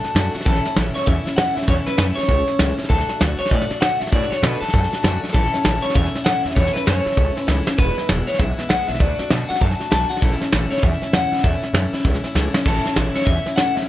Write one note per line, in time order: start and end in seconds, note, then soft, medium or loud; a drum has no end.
0.00 0.15 F#4 medium
0.00 0.30 A4 medium
0.00 muted upright bass stroke medium
0.04 0.14 A3 soft
0.04 0.15 D4 medium
0.04 snare soft
0.15 0.32 F#2 medium
0.15 0.34 D3 medium
0.15 0.34 A3 medium
0.15 0.34 D4 medium
0.15 0.33 F#4 loud
0.15 snare loud
0.15 hi-hat pedal medium
0.34 0.45 A3 medium
0.34 0.46 D4 medium
0.34 0.46 F#4 medium
0.34 muted upright bass stroke medium
0.34 snare soft
0.41 snare soft
0.45 0.63 A1 medium
0.45 0.65 A2 medium
0.45 0.65 E3 medium
0.45 0.65 A3 medium
0.45 0.65 C#4 medium
0.45 0.64 E4 medium
0.45 0.74 A4 medium
0.45 kick loud
0.45 snare soft
0.56 snare soft
0.65 0.76 A3 soft
0.65 0.76 C#4 medium
0.65 0.76 E4 medium
0.65 snare soft
0.76 0.93 A1 medium
0.76 0.95 A2 medium
0.76 0.96 E3 medium
0.76 0.96 A3 medium
0.76 0.95 C#4 medium
0.76 0.94 E4 medium
0.76 snare loud
0.76 hi-hat pedal medium
0.95 1.06 A3 soft
0.95 1.07 C#4 soft
0.95 1.07 E4 medium
0.95 1.06 C#5 medium
0.95 muted upright bass stroke medium
0.95 snare soft
1.02 snare soft
1.06 1.24 E2 medium
1.06 1.25 E3 medium
1.06 1.26 A3 medium
1.06 1.25 C#4 medium
1.06 1.24 E4 medium
1.06 1.36 E5 medium
1.06 kick loud
1.06 snare soft
1.25 1.37 A3 soft
1.25 1.37 C#4 soft
1.25 1.37 E4 medium
1.25 muted upright bass stroke medium
1.25 snare soft
1.36 1.54 E2 medium
1.36 1.56 A2 medium
1.36 1.57 E3 medium
1.36 1.57 A3 medium
1.36 1.56 C#4 medium
1.36 1.54 E4 medium
1.36 1.55 F#5 medium
1.36 snare loud
1.36 hi-hat pedal medium
1.55 1.67 E2 medium
1.55 1.67 A3 soft
1.55 1.68 C#4 medium
1.55 1.68 E4 medium
1.55 1.67 E5 medium
1.55 snare soft
1.62 snare soft
1.68 1.85 E2 medium
1.68 1.87 A2 medium
1.68 1.87 E3 medium
1.68 1.87 A3 medium
1.68 1.86 C#4 medium
1.68 1.85 E4 medium
1.68 1.73 C#5 medium
1.68 kick loud
1.68 snare soft
1.86 1.98 A3 soft
1.86 1.98 C#4 medium
1.86 1.98 E4 medium
1.86 1.96 B4 medium
1.86 muted upright bass stroke medium
1.86 snare soft
1.97 2.15 F#2 medium
1.97 2.17 A2 medium
1.97 2.18 E3 medium
1.97 2.18 A3 medium
1.97 2.17 C#4 medium
1.97 2.16 E4 loud
1.97 2.03 B4 medium
1.97 snare loud
1.97 hi-hat pedal medium
2.16 2.29 C#4 soft
2.16 2.29 E4 medium
2.16 2.74 C#5 medium
2.16 muted upright bass stroke medium
2.16 snare soft
2.20 2.28 A3 soft
2.20 snare soft
2.28 2.46 C#2 medium
2.28 2.48 E3 medium
2.28 2.48 A3 medium
2.28 2.48 C#4 medium
2.28 2.47 E4 medium
2.28 kick loud
2.28 snare soft
2.48 2.59 A3 soft
2.48 2.59 C#4 soft
2.48 2.59 E4 medium
2.48 snare soft
2.59 2.76 C#2 medium
2.59 2.78 A2 medium
2.59 2.78 E3 medium
2.59 2.79 A3 medium
2.59 2.78 C#4 medium
2.59 2.76 E4 medium
2.59 snare loud
2.59 hi-hat pedal medium
2.77 2.89 A3 medium
2.77 2.90 C#4 medium
2.77 2.90 E4 medium
2.77 muted upright bass stroke medium
2.77 snare soft
2.84 snare soft
2.89 3.07 D2 medium
2.89 3.09 D3 medium
2.89 3.09 A3 medium
2.89 3.08 D4 medium
2.89 3.07 F#4 medium
2.89 3.18 A4 medium
2.89 kick loud
2.89 snare soft
2.99 snare soft
3.08 3.19 A3 soft
3.08 3.19 D4 medium
3.08 3.20 F#4 medium
3.08 muted upright bass stroke medium
3.08 snare soft
3.20 3.38 D2 medium
3.20 3.39 D3 medium
3.20 3.39 A3 medium
3.20 3.39 D4 medium
3.20 3.37 F#4 medium
3.20 snare loud
3.20 hi-hat pedal medium
3.38 3.50 A3 soft
3.38 3.51 D4 soft
3.38 3.51 F#4 medium
3.38 3.50 C#5 medium
3.38 muted upright bass stroke medium
3.38 snare soft
3.46 snare soft
3.50 3.68 A2 medium
3.50 3.70 D3 medium
3.50 3.70 A3 medium
3.50 3.69 D4 medium
3.50 3.67 F#4 medium
3.50 3.80 D5 loud
3.50 kick loud
3.50 snare soft
3.61 snare soft
3.68 3.80 A3 soft
3.68 3.81 D4 soft
3.68 3.81 F#4 medium
3.68 muted upright bass stroke medium
3.68 snare soft
3.81 3.99 A2 medium
3.81 4.00 D3 medium
3.81 4.01 A3 medium
3.81 4.00 D4 medium
3.81 3.99 F#4 medium
3.81 4.00 F#5 loud
3.81 snare loud
3.81 hi-hat pedal medium
4.00 4.11 A2 medium
4.00 4.11 A3 soft
4.00 4.11 D4 soft
4.00 4.12 F#4 medium
4.00 4.12 E5 medium
4.00 snare soft
4.07 snare soft
4.12 4.29 A2 loud
4.12 4.31 D3 medium
4.12 4.31 A3 medium
4.12 4.31 D4 medium
4.12 4.29 F#4 medium
4.12 4.32 D5 medium
4.12 kick loud
4.12 snare soft
4.22 snare soft
4.31 4.42 A3 soft
4.31 4.42 D4 medium
4.31 4.42 F#4 medium
4.31 4.42 C#5 medium
4.31 muted upright bass stroke medium
4.31 snare soft
4.42 4.60 B2 medium
4.42 4.61 D3 medium
4.42 4.62 A3 medium
4.42 4.61 D4 medium
4.42 4.60 F#4 medium
4.42 4.60 B4 medium
4.42 snare loud
4.42 hi-hat pedal medium
4.61 4.72 A3 soft
4.61 4.73 D4 medium
4.61 4.73 F#4 medium
4.61 5.18 A4 medium
4.61 muted upright bass stroke medium
4.61 snare soft
4.69 4.92 D3 medium
4.69 snare soft
4.73 4.90 F#2 medium
4.73 4.92 A3 medium
4.73 4.91 D4 medium
4.73 4.89 F#4 medium
4.73 kick loud
4.73 snare soft
4.84 snare soft
4.91 5.02 A3 soft
4.91 5.03 D4 soft
4.91 5.03 F#4 medium
4.91 snare soft
5.03 5.21 F#2 medium
5.03 5.22 D3 medium
5.03 5.22 A3 medium
5.03 5.21 D4 medium
5.03 5.20 F#4 loud
5.03 snare loud
5.03 hi-hat pedal medium
5.21 5.33 A3 medium
5.21 5.34 D4 medium
5.21 5.34 F#4 medium
5.21 muted upright bass stroke medium
5.21 snare soft
5.29 5.52 A2 medium
5.29 5.84 A4 medium
5.29 snare soft
5.33 5.51 A1 medium
5.33 5.53 E3 medium
5.33 5.53 A3 loud
5.33 5.52 C#4 medium
5.33 5.51 E4 loud
5.33 kick loud
5.33 snare soft
5.52 5.63 A3 soft
5.52 5.64 C#4 medium
5.52 5.64 E4 medium
5.52 muted upright bass stroke medium
5.52 snare soft
5.63 5.82 A1 medium
5.63 5.83 A2 medium
5.63 5.83 E3 medium
5.63 5.83 A3 medium
5.63 5.82 C#4 medium
5.63 5.81 E4 medium
5.63 snare loud
5.63 hi-hat pedal medium
5.82 5.93 A3 soft
5.82 5.94 C#4 medium
5.82 5.94 E4 medium
5.82 5.94 C#5 medium
5.82 muted upright bass stroke medium
5.82 snare soft
5.90 6.13 E3 medium
5.90 snare soft
5.94 6.12 E2 loud
5.94 6.14 A3 medium
5.94 6.14 C#4 medium
5.94 6.13 E4 medium
5.94 6.24 E5 loud
5.94 kick loud
5.94 snare soft
6.05 snare soft
6.14 6.25 A3 soft
6.14 6.25 C#4 medium
6.14 6.25 E4 medium
6.14 muted upright bass stroke medium
6.14 snare soft
6.25 6.43 E2 medium
6.25 6.44 A2 medium
6.25 6.45 E3 medium
6.25 6.45 A3 medium
6.25 6.44 C#4 medium
6.25 6.42 E4 medium
6.25 6.43 F#5 loud
6.25 snare loud
6.25 hi-hat pedal medium
6.43 6.55 E2 medium
6.43 6.56 A3 soft
6.43 6.56 C#4 medium
6.43 6.56 E4 medium
6.43 6.56 E5 medium
6.43 snare soft
6.51 snare soft
6.55 6.73 E2 medium
6.55 6.75 A2 medium
6.55 6.75 E3 medium
6.55 6.76 A3 medium
6.55 6.75 C#4 medium
6.55 6.73 E4 medium
6.55 6.73 C#5 medium
6.55 kick loud
6.55 snare soft
6.66 snare soft
6.73 6.86 A3 soft
6.73 6.86 C#4 medium
6.73 6.86 E4 medium
6.73 6.86 B4 medium
6.73 muted upright bass stroke medium
6.73 snare soft
6.86 7.04 F#2 medium
6.86 7.05 A2 medium
6.86 7.06 E3 medium
6.86 7.06 A3 medium
6.86 7.05 C#4 medium
6.86 7.04 E4 medium
6.86 7.42 C#5 medium
6.86 snare loud
6.86 hi-hat pedal medium
7.05 7.16 A3 soft
7.05 7.17 C#4 medium
7.05 7.17 E4 medium
7.05 muted upright bass stroke medium
7.05 snare soft
7.12 snare soft
7.17 7.34 C#2 medium
7.17 7.36 E3 medium
7.17 7.36 A3 medium
7.17 7.36 C#4 medium
7.17 7.35 E4 medium
7.17 kick loud
7.17 snare soft
7.36 7.47 A3 medium
7.36 7.47 C#4 medium
7.36 7.47 E4 medium
7.36 snare soft
7.42 7.62 B4 medium
7.47 7.65 C#2 medium
7.47 7.66 A2 medium
7.47 7.67 E3 medium
7.47 7.67 A3 medium
7.47 7.67 C#4 medium
7.47 7.65 E4 medium
7.47 snare medium
7.47 hi-hat pedal medium
7.66 7.79 A3 medium
7.66 7.79 C#4 medium
7.66 7.78 E4 medium
7.66 snare medium
7.78 7.95 E1 loud
7.78 7.97 E2 medium
7.78 7.97 B2 medium
7.78 7.97 E3 medium
7.78 7.98 G#3 medium
7.78 7.97 B3 medium
7.78 7.96 E4 medium
7.78 8.06 B4 medium
7.78 kick loud
7.78 snare soft
7.97 8.08 E3 soft
7.97 8.08 G#3 soft
7.97 8.09 B3 medium
7.97 8.09 E4 medium
7.97 muted upright bass stroke medium
7.97 snare soft
8.08 8.26 E1 medium
8.08 8.27 E2 medium
8.08 8.28 B2 medium
8.08 8.28 E3 medium
8.08 8.28 G#3 medium
8.08 8.27 B3 medium
8.08 8.26 E4 medium
8.08 snare loud
8.08 hi-hat pedal medium
8.27 8.37 E3 soft
8.27 8.38 G#3 soft
8.27 8.39 B3 medium
8.27 8.39 E4 medium
8.27 8.38 C#5 medium
8.27 snare soft
8.34 snare soft
8.38 8.56 B1 loud
8.38 8.58 E3 medium
8.38 8.58 G#3 medium
8.38 8.57 B3 medium
8.38 8.57 E4 medium
8.38 8.70 E5 loud
8.38 kick loud
8.38 snare soft
8.58 8.68 E3 soft
8.58 8.69 G#3 soft
8.58 8.69 B3 medium
8.58 8.69 E4 medium
8.58 muted upright bass stroke medium
8.58 snare soft
8.69 8.86 B1 medium
8.69 8.88 E2 medium
8.69 8.88 B2 medium
8.69 8.88 E3 medium
8.69 8.88 G#3 medium
8.69 8.87 B3 medium
8.69 8.86 E4 medium
8.69 8.89 F#5 loud
8.69 snare loud
8.69 hi-hat pedal medium
8.88 8.99 B1 medium
8.88 8.99 E3 soft
8.88 9.00 G#3 soft
8.88 9.00 B3 soft
8.88 9.00 E4 medium
8.88 8.99 E5 medium
8.88 snare soft
8.95 snare soft
8.99 9.17 D2 loud
8.99 9.19 D3 medium
8.99 9.19 A3 medium
8.99 9.19 D4 medium
8.99 9.18 F#4 loud
8.99 9.30 D5 medium
8.99 kick loud
8.99 snare soft
9.19 9.30 A3 soft
9.19 9.31 D4 medium
9.19 9.31 F#4 medium
9.19 muted upright bass stroke medium
9.19 snare soft
9.30 9.47 B2 medium
9.30 9.50 D3 medium
9.30 9.50 A3 medium
9.30 9.50 D4 medium
9.30 9.49 F#4 medium
9.30 snare loud
9.30 hi-hat pedal medium
9.49 9.60 A3 soft
9.49 9.61 D4 soft
9.49 9.61 F#4 medium
9.49 9.61 F#5 loud
9.49 muted upright bass stroke medium
9.49 snare soft
9.55 snare soft
9.61 9.78 F#2 medium
9.61 9.80 D3 medium
9.61 9.80 A3 medium
9.61 9.79 D4 medium
9.61 9.78 F#4 medium
9.61 9.90 A5 loud
9.61 kick loud
9.61 snare soft
9.71 snare soft
9.79 9.90 A3 soft
9.79 9.91 D4 soft
9.79 9.91 F#4 medium
9.79 muted upright bass stroke medium
9.79 snare soft
9.91 10.08 B1 medium
9.91 10.10 D3 medium
9.91 10.10 A3 medium
9.91 10.10 D4 medium
9.91 10.09 F#4 medium
9.91 10.09 A5 loud
9.91 snare loud
9.91 hi-hat pedal medium
10.10 10.21 A3 soft
10.10 10.22 D4 medium
10.10 10.22 F#4 medium
10.10 10.15 F#5 loud
10.10 muted upright bass stroke medium
10.10 snare soft
10.17 snare soft
10.21 10.39 A1 loud
10.21 10.40 A2 medium
10.21 10.41 E3 medium
10.21 10.41 A3 medium
10.21 10.41 C#4 medium
10.21 10.39 E4 medium
10.21 10.72 A4 loud
10.21 kick loud
10.21 snare soft
10.32 snare soft
10.41 10.52 A3 medium
10.41 10.52 C#4 medium
10.41 10.52 E4 medium
10.41 muted upright bass stroke medium
10.41 snare soft
10.52 10.69 A1 medium
10.52 10.71 A2 medium
10.52 10.72 E3 medium
10.52 10.72 A3 medium
10.52 10.71 C#4 medium
10.52 10.70 E4 medium
10.52 snare loud
10.52 hi-hat pedal medium
10.71 10.82 A3 soft
10.71 10.83 C#4 soft
10.71 10.83 E4 medium
10.71 10.82 C#5 medium
10.71 snare soft
10.77 snare soft
10.82 11.00 E2 loud
10.82 11.02 E3 medium
10.82 11.02 A3 medium
10.82 11.02 C#4 medium
10.82 11.00 E4 medium
10.82 11.14 E5 loud
10.82 kick loud
10.82 snare soft
11.02 11.13 A3 soft
11.02 11.13 C#4 medium
11.02 11.13 E4 medium
11.02 muted upright bass stroke medium
11.02 snare soft
11.13 11.30 E2 medium
11.13 11.32 A2 medium
11.13 11.32 E3 medium
11.13 11.33 A3 medium
11.13 11.32 C#4 medium
11.13 11.30 E4 medium
11.13 11.45 F#5 loud
11.13 snare loud
11.13 hi-hat pedal medium
11.31 11.42 E2 medium
11.31 11.43 A3 soft
11.31 11.43 C#4 soft
11.31 11.43 E4 medium
11.31 snare soft
11.39 snare soft
11.43 11.61 E2 loud
11.43 11.62 A2 medium
11.43 11.63 E3 medium
11.43 11.63 A3 medium
11.43 11.63 C#4 medium
11.43 11.61 E4 medium
11.43 12.50 E5 medium
11.43 kick loud
11.43 snare soft
11.62 11.74 A3 soft
11.62 11.75 C#4 soft
11.62 11.74 E4 medium
11.62 muted upright bass stroke medium
11.62 snare soft
11.73 11.91 F#2 medium
11.73 11.93 A2 medium
11.73 11.93 E3 medium
11.73 11.94 A3 medium
11.73 11.93 C#4 medium
11.73 11.92 E4 medium
11.73 snare loud
11.73 hi-hat pedal medium
11.92 12.04 A3 soft
11.92 12.05 C#4 medium
11.92 12.05 E4 medium
11.92 muted upright bass stroke medium
11.92 snare soft
12.00 snare soft
12.04 12.22 C#2 medium
12.04 12.23 E3 medium
12.04 12.24 A3 medium
12.04 12.23 C#4 medium
12.04 12.22 E4 medium
12.04 kick loud
12.04 snare soft
12.14 snare soft
12.23 12.35 A3 medium
12.23 12.35 C#4 medium
12.23 12.35 E4 medium
12.23 muted upright bass stroke medium
12.23 snare soft
12.35 12.52 C#2 loud
12.35 12.54 A2 medium
12.35 12.54 E3 medium
12.35 12.54 A3 loud
12.35 12.54 C#4 medium
12.35 12.53 E4 medium
12.35 snare medium
12.35 hi-hat pedal medium
12.54 12.65 A3 soft
12.54 12.65 C#4 medium
12.54 12.66 E4 medium
12.54 muted upright bass stroke medium
12.54 snare medium
12.65 12.83 A1 medium
12.65 12.84 A2 medium
12.65 12.85 E3 medium
12.65 12.85 A3 medium
12.65 12.85 C#4 medium
12.65 12.83 E4 medium
12.65 12.94 A4 medium
12.65 kick loud
12.65 snare soft
12.65 crash loud
12.84 12.95 A3 soft
12.84 12.96 C#4 medium
12.84 12.96 E4 medium
12.84 muted upright bass stroke medium
12.84 snare soft
12.96 13.13 A1 medium
12.96 13.15 A2 medium
12.96 13.15 E3 medium
12.96 13.15 A3 medium
12.96 13.15 C#4 medium
12.96 13.13 E4 medium
12.96 snare loud
12.96 hi-hat pedal medium
13.14 13.26 A3 soft
13.14 13.26 C#4 medium
13.14 13.26 E4 medium
13.14 13.27 C#5 medium
13.14 muted upright bass stroke medium
13.14 snare soft
13.21 13.56 E5 medium
13.21 snare soft
13.26 13.44 E2 medium
13.26 13.45 E3 medium
13.26 13.46 A3 medium
13.26 13.46 C#4 medium
13.26 13.44 E4 medium
13.26 kick loud
13.26 snare soft
13.45 13.57 A3 soft
13.45 13.57 C#4 soft
13.45 13.57 E4 medium
13.45 muted upright bass stroke medium
13.45 snare soft
13.56 13.74 E2 medium
13.56 13.76 A2 medium
13.56 13.76 E3 medium
13.56 13.76 A3 medium
13.56 13.76 C#4 medium
13.56 13.75 E4 medium
13.56 13.75 F#5 medium
13.56 snare loud
13.56 hi-hat pedal medium
13.75 13.86 C#2 medium
13.75 13.88 A3 soft
13.75 13.88 C#4 medium
13.75 13.88 E4 medium
13.75 13.86 E5 medium
13.75 snare soft
13.82 snare soft